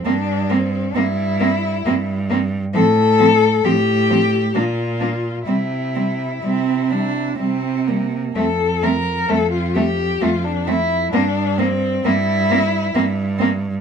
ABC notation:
X:1
M:3/4
L:1/16
Q:1/4=66
K:Cmix
V:1 name="Cello"
D2 C2 E6 z2 | A4 G4 F4 | E8- E2 z2 | A2 B2 A F G2 F D E2 |
D2 C2 E6 z2 |]
V:2 name="Cello"
C2 C2 C2 C2 C2 C2 | C2 C2 C2 C2 D2 D2 | C2 C2 C2 D2 C2 B,2 | C2 C2 C2 C2 C2 C2 |
C2 C2 C2 C2 C2 C2 |]
V:3 name="Cello"
B,2 B,2 B,2 B,2 B,2 B,2 | F,2 F,2 F,2 F,2 B,2 B,2 | G,2 G,2 G,2 G,2 G,2 G,2 | A,2 A,2 A,2 A,2 A,2 A,2 |
B,2 B,2 B,2 B,2 B,2 B,2 |]
V:4 name="Cello" clef=bass
G,,4 G,,4 G,,4 | A,,4 A,,4 B,,4 | C,4 C,4 C,4 | F,,4 F,,4 F,,4 |
G,,4 G,,4 G,,4 |]